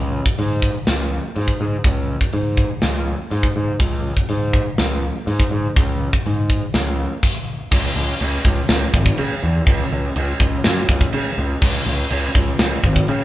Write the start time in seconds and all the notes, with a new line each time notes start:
Already playing: C#2
0.26 kick
0.38 G#2, open hi-hat
0.62 kick
0.87 C#2, snare, open hi-hat
1.36 G#2, open hi-hat
1.48 kick
1.61 G#2
1.84 C#2, kick, open hi-hat
2.21 kick
2.33 G#2, open hi-hat
2.57 kick
2.82 C#2, snare, open hi-hat
3.31 G#2, open hi-hat
3.43 kick
3.56 G#2
3.80 C#2, kick, open hi-hat
4.17 kick
4.29 G#2, open hi-hat
4.53 kick
4.78 C#2, snare, open hi-hat
5.27 G#2, open hi-hat
5.40 kick
5.51 G#2
5.76 C#2, kick, open hi-hat
6.13 kick
6.26 G#2, open hi-hat
6.50 kick
6.74 C#2, snare, open hi-hat
7.23 kick, crash
7.72 C#2, kick, crash, china
7.96 C#2
8.20 C#2, china
8.45 C#2, kick
8.69 C#2, snare, china
8.94 G#1, kick
9.06 kick
9.18 C#3, china
9.44 E2
9.67 C#2, kick, china
9.92 C#2
10.16 C#2, china
10.40 C#2, kick
10.64 F#2, snare, china
10.89 C#2, kick
11.01 kick
11.13 C#3, china
11.38 C#2
11.62 C#2, kick, crash, china
11.86 C#2
12.10 C#2, china
12.35 C#2, kick
12.59 C#2, snare, china
12.84 G#1, kick
12.96 kick
13.08 C#3, china